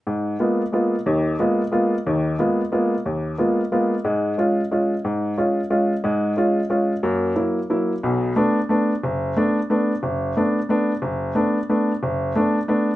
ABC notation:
X:1
M:3/4
L:1/8
Q:"Swing" 1/4=180
K:G#dor
V:1 name="Upright piano"
G,,2 [G,A,B,E] z [G,A,B,E] z | [D,,D,]2 [G,A,B,E] z [G,A,B,E] z | [D,,D,]2 [G,A,B,E] z [G,A,B,E] z | D,,2 [G,A,B,E] z [G,A,B,E] z |
[G,,G,]2 [G,CE] z [G,CE] z | G,,2 [G,CE] z [G,CE] z | [G,,G,]2 [G,CE] z [G,CE] z | [F,,A,]2 [F,A,=E] z [F,A,E] z |
[K:Bm] [B,,,B,,]2 [A,B,D] z [A,B,D] z | F,,,2 [A,B,D] z [A,B,D] z | F,,,2 [A,B,D] z [A,B,D] z | F,,,2 [A,B,D] z [A,B,D] z |
F,,,2 [A,B,D] z [A,B,D] z |]